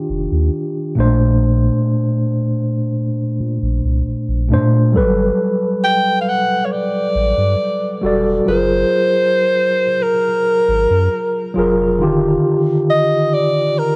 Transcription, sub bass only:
0.10 0.28 F1 medium
0.32 0.50 D#2 medium
0.98 1.70 A#1 medium
3.40 3.58 A#2 medium
3.62 3.80 A#1 loud
3.84 4.03 C2 medium
4.07 4.15 A#1 soft
4.29 4.52 A#1 loud
4.51 4.96 A#2 medium
4.95 5.31 G1 loud
7.15 7.33 A1 loud
7.38 7.56 G2 medium
8.04 8.40 E1 medium
8.48 8.84 F#1 loud
10.68 10.86 G#1 medium
10.90 11.08 F#2 loud
11.57 12.02 F1 medium
12.01 12.37 D#1 loud

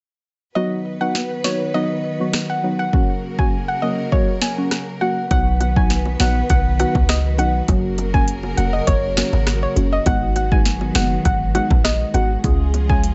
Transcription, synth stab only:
0.55 0.97 F#3 medium
0.55 0.97 B3 medium
0.55 0.97 D#4 medium
0.55 0.98 F#4 loud
1.00 1.16 F#3 medium
1.00 1.16 B3 medium
1.00 1.16 D#4 medium
1.00 1.16 F#4 medium
1.44 1.61 F#3 medium
1.44 1.62 B3 medium
1.44 1.62 D#4 medium
1.44 1.62 F#4 medium
1.74 1.91 F#3 medium
1.74 1.91 B3 medium
1.74 1.91 D#4 medium
1.74 1.92 F#4 loud
2.20 2.35 F#3 medium
2.20 2.35 B3 medium
2.20 2.35 D#4 medium
2.20 2.35 F#4 medium
2.63 2.80 F#3 medium
2.63 2.80 B3 medium
2.63 2.80 D#4 medium
2.63 2.81 F#4 medium
2.93 3.10 F#3 medium
2.93 3.10 A#3 medium
2.93 3.10 C#4 medium
2.93 3.10 F#4 loud
3.39 3.54 F#3 medium
3.39 3.54 A#3 medium
3.39 3.54 C#4 medium
3.39 3.54 F#4 medium
3.82 3.99 F#3 medium
3.82 3.99 A#3 medium
3.82 3.99 C#4 medium
3.82 4.00 F#4 medium
4.12 4.29 F#3 medium
4.12 4.29 A#3 medium
4.12 4.29 C#4 medium
4.12 4.29 F#4 loud
4.57 4.73 F#3 medium
4.57 4.73 A#3 medium
4.57 4.73 C#4 medium
4.57 4.73 F#4 medium
5.01 5.18 F#3 medium
5.01 5.18 A#3 medium
5.01 5.18 C#4 medium
5.01 5.18 F#4 medium
5.31 5.73 F#3 loud
5.31 5.73 B3 medium
5.31 5.73 D#4 medium
5.31 5.73 F#4 loud
5.76 5.91 F#3 medium
5.76 5.92 B3 medium
5.76 5.92 D#4 medium
5.76 5.92 F#4 medium
6.20 6.37 F#3 medium
6.20 6.37 B3 medium
6.20 6.37 D#4 medium
6.20 6.37 F#4 medium
6.79 6.96 F#3 medium
6.79 6.96 B3 medium
6.79 6.96 D#4 medium
6.79 6.97 F#4 medium
7.39 7.56 F#3 medium
7.39 7.56 B3 medium
7.39 7.56 D#4 medium
7.39 7.56 F#4 medium
7.68 8.10 F#3 loud
7.68 8.10 A#3 medium
7.68 8.10 C#4 medium
7.68 8.11 F#4 loud
8.13 8.29 F#3 medium
8.13 8.29 A#3 medium
8.13 8.29 C#4 medium
8.13 8.29 F#4 medium
8.57 8.74 F#3 medium
8.57 8.74 A#3 medium
8.57 8.75 C#4 medium
8.57 8.75 F#4 medium
9.17 9.34 F#3 medium
9.17 9.34 A#3 medium
9.17 9.34 C#4 medium
9.17 9.34 F#4 medium
9.76 10.04 F#3 medium
9.76 10.04 A#3 medium
9.76 10.04 C#4 medium
9.76 10.04 F#4 medium
10.06 10.48 G#3 loud
10.06 10.48 B3 medium
10.06 10.48 D#4 medium
10.06 10.48 F#4 loud
10.52 10.67 G#3 medium
10.52 10.67 B3 medium
10.52 10.67 D#4 medium
10.52 10.67 F#4 medium
10.95 11.12 G#3 medium
10.95 11.12 B3 medium
10.95 11.12 D#4 medium
10.95 11.12 F#4 medium
11.54 11.71 G#3 medium
11.54 11.71 B3 medium
11.54 11.72 D#4 medium
11.54 11.72 F#4 medium
12.14 12.31 G#3 medium
12.14 12.31 B3 medium
12.14 12.31 D#4 medium
12.14 12.31 F#4 medium
12.44 12.85 G#3 medium
12.44 12.85 C#4 medium
12.44 12.86 F4 medium
12.44 12.86 G#4 loud
12.89 13.04 G#3 medium
12.89 13.04 C#4 medium
12.89 13.05 F4 medium
12.89 13.05 G#4 medium

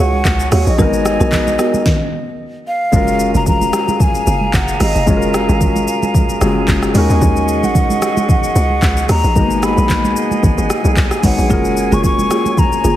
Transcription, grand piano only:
0.00 0.47 G#3 medium
0.00 0.48 C#4 medium
0.00 0.48 D#4 medium
0.00 0.49 F#4 medium
0.00 0.53 A#4 medium
0.77 1.83 G#3 medium
0.77 1.84 B3 medium
0.77 1.84 D#4 medium
0.77 1.85 F#4 medium
0.82 1.85 A#4 medium
2.92 5.03 G#3 medium
2.92 5.03 C#4 medium
2.92 5.04 F4 medium
2.92 5.04 F#4 medium
2.96 5.05 A#4 medium
5.06 6.38 G#3 medium
5.06 6.38 C#4 medium
5.06 6.39 F4 medium
5.06 6.39 F#4 medium
5.10 5.16 G#4 medium
5.17 6.43 A#4 medium
6.41 6.92 G#3 medium
6.41 6.93 C#4 medium
6.41 6.95 F4 medium
6.41 6.95 F#4 medium
6.41 6.96 G#4 medium
6.93 9.04 G#3 medium
6.93 9.05 C#4 medium
6.93 9.05 D#4 medium
6.93 9.06 F#4 medium
6.98 9.07 A#4 medium
9.34 11.19 G#3 medium
9.34 9.37 A#3 medium
9.34 11.20 D#4 medium
9.34 11.21 F#4 medium
9.39 11.21 A#3 medium
9.39 11.22 B3 medium
11.23 11.47 G#3 medium
11.23 11.50 B3 soft
11.23 11.51 D#4 soft
11.23 11.50 F#4 soft
11.23 11.51 C#5 medium
11.49 12.96 G#3 medium
11.49 12.96 C#4 medium
11.49 12.96 F#4 medium
11.49 12.96 G#4 medium
11.53 12.96 A#4 medium

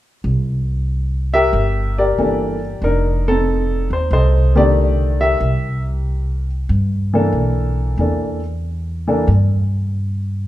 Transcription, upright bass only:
0.24 1.49 C2 medium
1.53 2.14 G1 medium
2.18 2.79 G1 medium
2.82 3.87 F1 medium
3.90 4.10 D#2 medium
4.11 5.36 C2 medium
5.40 6.66 C2 medium
6.69 7.30 G2 medium
7.32 7.94 B1 medium
7.98 9.24 E2 medium
9.28 10.47 G2 medium

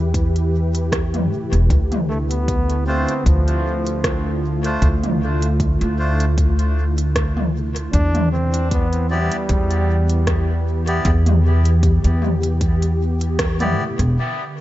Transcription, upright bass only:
0.00 1.31 E2 medium
1.31 1.50 A2 medium
1.52 1.68 E1 medium
1.70 3.04 D2 medium
3.26 4.79 D2 medium
4.82 5.77 D2 medium
5.81 7.90 D2 medium
7.94 9.28 E2 medium
9.49 11.02 E2 medium
11.05 12.00 E2 loud
12.04 13.78 E2 medium
13.78 13.97 A2 medium
13.99 14.15 E1 medium

